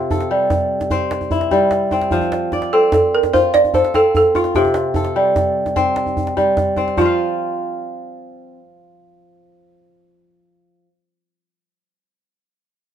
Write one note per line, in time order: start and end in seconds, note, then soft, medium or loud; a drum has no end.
0.00 2.05 C3 medium
0.00 0.90 C4 medium
0.00 1.02 F4 medium
0.00 0.27 G4 medium
0.00 0.11 A4 medium
0.11 1.43 A4 medium
0.11 djembe tone medium
0.11 djembe bass medium
0.20 djembe slap medium
0.31 1.50 G3 medium
0.50 djembe slap medium
0.50 djembe tone medium
0.50 djembe bass medium
0.81 djembe slap medium
0.81 djembe tone soft
0.90 1.92 C4 medium
0.90 djembe bass medium
1.11 djembe slap medium
1.21 djembe tone medium
1.31 2.18 E4 medium
1.31 djembe bass medium
1.41 djembe slap medium
1.51 2.17 G3 medium
1.51 djembe tone medium
1.71 djembe slap medium
1.91 2.73 C4 medium
1.91 djembe tone medium
2.01 djembe slap medium
2.11 4.46 F3 medium
2.11 djembe bass medium
2.21 djembe tone medium
2.32 djembe slap medium
2.52 3.64 D5 medium
2.52 djembe tone medium
2.62 djembe slap medium
2.73 3.94 C4 medium
2.73 2.92 A4 medium
2.92 3.14 A4 medium
2.92 djembe slap medium
2.92 djembe tone medium
2.92 djembe bass medium
3.15 3.35 A#4 medium
3.23 djembe slap medium
3.23 djembe tone medium
3.34 4.35 F4 medium
3.34 3.54 C5 loud
3.34 djembe bass medium
3.45 djembe slap soft
3.54 3.75 D5 loud
3.54 djembe slap medium
3.64 djembe tone medium
3.74 4.96 A4 medium
3.74 3.95 C5 medium
3.74 djembe bass medium
3.84 djembe slap medium
3.94 5.75 C4 medium
3.94 4.16 A4 medium
3.94 djembe tone medium
4.15 4.36 A4 medium
4.15 djembe bass medium
4.35 5.86 F4 medium
4.35 4.45 F4 medium
4.35 djembe tone medium
4.44 djembe slap medium
4.55 6.90 C3 medium
4.55 5.72 G4 medium
4.55 djembe bass medium
4.65 djembe tone medium
4.74 djembe slap medium
4.85 djembe slap soft
4.94 6.28 A4 medium
4.94 djembe tone medium
4.94 djembe bass medium
5.05 djembe slap medium
5.15 6.36 G3 medium
5.15 djembe slap soft
5.36 djembe slap medium
5.36 djembe tone medium
5.36 djembe bass medium
5.66 djembe slap soft
5.66 djembe tone soft
5.76 6.77 C4 medium
5.76 djembe bass medium
5.96 djembe slap medium
6.06 djembe tone medium
6.17 djembe bass medium
6.27 djembe slap soft
6.37 7.02 G3 medium
6.37 djembe tone medium
6.57 djembe slap medium
6.57 djembe bass medium
6.76 8.57 C4 medium
6.76 djembe tone medium
6.88 djembe slap soft
6.97 10.87 F3 medium
6.97 10.83 F4 medium
6.97 10.90 F4 medium
6.97 djembe bass medium
7.05 10.93 F5 medium